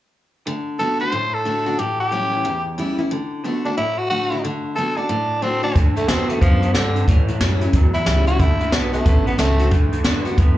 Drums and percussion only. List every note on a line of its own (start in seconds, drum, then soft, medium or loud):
5.76 kick loud
5.76 closed hi-hat medium
5.96 closed hi-hat medium
6.08 snare loud
6.08 closed hi-hat medium
6.29 closed hi-hat medium
6.42 kick loud
6.42 closed hi-hat medium
6.62 closed hi-hat medium
6.74 snare loud
6.74 closed hi-hat medium
6.96 closed hi-hat medium
7.08 kick loud
7.08 closed hi-hat medium
7.28 closed hi-hat medium
7.41 snare loud
7.41 closed hi-hat medium
7.61 closed hi-hat medium
7.73 kick loud
7.73 closed hi-hat medium
7.94 closed hi-hat medium
8.06 snare loud
8.06 closed hi-hat medium
8.27 closed hi-hat medium
8.39 kick loud
8.39 closed hi-hat medium
8.60 closed hi-hat medium
8.72 snare loud
8.72 closed hi-hat medium
8.94 closed hi-hat medium
9.06 kick loud
9.06 closed hi-hat medium
9.27 closed hi-hat medium
9.39 snare loud
9.39 closed hi-hat medium
9.60 closed hi-hat medium
9.72 kick loud
9.72 closed hi-hat medium
9.93 closed hi-hat medium
10.04 snare loud
10.04 closed hi-hat medium
10.26 closed hi-hat medium
10.38 kick loud
10.38 closed hi-hat medium